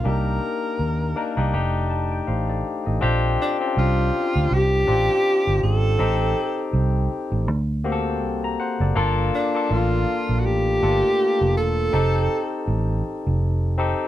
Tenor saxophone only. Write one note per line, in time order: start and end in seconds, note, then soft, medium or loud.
0.08 1.55 A#4 medium
3.41 3.57 D4 medium
3.79 4.55 F4 medium
4.54 5.63 G4 loud
5.63 6.70 A4 loud
9.35 9.74 D4 medium
9.72 10.41 F4 medium
10.39 10.47 F#4 medium
10.45 11.56 G4 loud
11.57 12.64 A4 loud